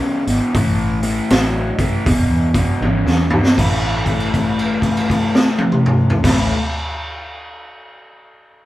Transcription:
Already playing: E2 C#3
0.27 G#1 E2 B2, open hi-hat
0.55 A1 A2 E3, kick, open hi-hat
1.03 A2 E3, open hi-hat
1.30 A1 A2 F#3, snare, open hi-hat
1.79 A2 E3, kick, open hi-hat
2.06 E1 E2 B2, kick, open hi-hat
2.30 E2
2.54 E2 B2, kick, open hi-hat
2.81 G#1 E2 C#3, high tom
3.06 E2, snare
3.30 E2 B2, mid tom
3.45 snare
3.57 A1 A2 E3 A3, kick, crash
4.06 kick, crash
4.20 crash
4.34 kick, crash
4.59 crash
4.82 kick, crash
4.97 crash
5.10 kick, crash
5.35 snare
5.59 high tom
5.72 mid tom
5.86 mid tom
6.10 floor tom
6.23 A1 A2 E3, kick, snare, crash
6.27 A3

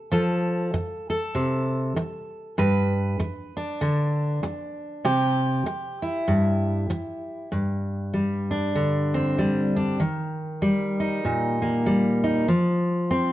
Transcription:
0.12 F3 A4
0.74 muted steel-string acoustic guitar stroke
1.10 A4
1.35 C3
1.96 muted steel-string acoustic guitar stroke
2.58 G2 B4
3.19 muted steel-string acoustic guitar stroke
3.57 D4
3.81 D3
4.43 muted steel-string acoustic guitar stroke
5.05 C3 G4
5.66 muted steel-string acoustic guitar stroke
6.02 E4
6.28 G2
6.90 muted steel-string acoustic guitar stroke
7.52 G2
8.14 G3
8.51 D4
8.75 D3
9.14 C4
9.38 G3
9.76 D4
10.00 D#3
10.62 G3
11.00 D#4
11.25 A#2
11.62 A#3
11.86 G3
12.24 D#4
12.48 F3
13.11 C4

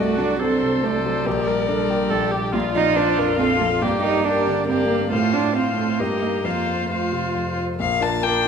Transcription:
Already playing: C2 A3 F#4 A4
0.00 D5
0.18 F#3 D4
0.39 C4 D4 A4 C5
0.61 C3 A4
0.83 C2 A3 C5 D5
1.05 F#3 G3
1.25 A#1 G4 A#4
1.47 G3 A#4
1.68 D4 A4 A#4
1.90 A#2 G4
2.10 A#1 A4
2.31 G3 G4
2.52 A#1 A#3 F4 D5
2.75 F3 D#4
2.96 D4 F4 C5
3.18 F2 A#4
3.38 A#1 C4 A4 F5
3.60 F3 A#3
3.82 G2 A#3 G4 D5
4.03 A#3 D#4
4.25 D4 G4 A#4 D5
4.47 D3
4.68 G2 C4 G4 A#4 D5
4.89 A#3
5.11 A2 A3 F4 C5 F5
5.33 C4 D4
5.54 C4 F4 C5 F5
5.76 A3
5.98 G2 A#3 G4 A#4 D#5
6.21 A#3 D#4 D#5
6.44 F2 A#3 F4 C5 F5
6.67 C4
6.82 A#3
6.89 A3 F4 C5 F5
7.12 C3
7.35 F2
7.57 C4
7.79 A#1 A#3 A#4 F5
8.00 D4 F4 A#4 A5
8.22 D4 F4 A#4 G5
8.44 D4 F4

